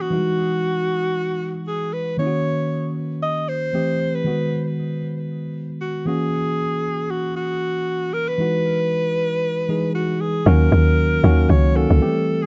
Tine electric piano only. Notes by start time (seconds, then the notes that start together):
0.10 E3 G3 D#4 F#4
0.18 G#3
2.17 D#3 A#3 C#4 E4
2.27 F#4
3.73 E3 A3 C4 G4
4.24 D#3 G#3 B3 F#4
6.05 E3 A#3 C#4 F#4
8.38 E3 G#3 D#4 F#4
9.68 E3 G#3 D#4 G#4
10.46 D#3 F#3 A#3 C#4 F#4
11.23 D#3 F#3 A#3 C#4 F#4
11.75 D#3 F#3 A#3 C#4 F#4
12.01 E3 G3 A3 C4 G4